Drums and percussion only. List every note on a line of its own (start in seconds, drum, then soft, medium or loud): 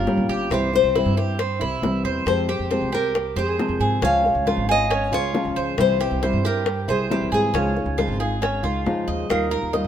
0.07 high bongo soft
0.07 low bongo medium
0.51 high bongo medium
0.73 high bongo soft
0.96 high bongo medium
1.18 high bongo soft
1.39 high bongo medium
1.61 high bongo soft
1.83 high bongo soft
1.83 low bongo medium
2.27 high bongo medium
2.49 high bongo soft
2.71 high bongo medium
2.93 high bongo soft
3.15 high bongo medium
3.37 high bongo soft
3.59 high bongo soft
3.59 low bongo medium
4.02 high bongo medium
4.25 high bongo soft
4.47 high bongo medium
4.69 high bongo soft
4.91 high bongo medium
5.13 high bongo soft
5.35 high bongo soft
5.35 low bongo medium
5.78 high bongo medium
6.00 high bongo soft
6.23 high bongo medium
6.45 high bongo soft
6.66 high bongo medium
6.89 high bongo soft
7.11 high bongo soft
7.11 low bongo medium
7.55 high bongo medium
7.77 high bongo soft
7.99 high bongo medium
8.21 high bongo soft
8.43 high bongo medium
8.65 high bongo soft
8.86 high bongo soft
8.86 low bongo medium
9.30 high bongo medium
9.30 claves medium
9.53 high bongo soft
9.74 high bongo medium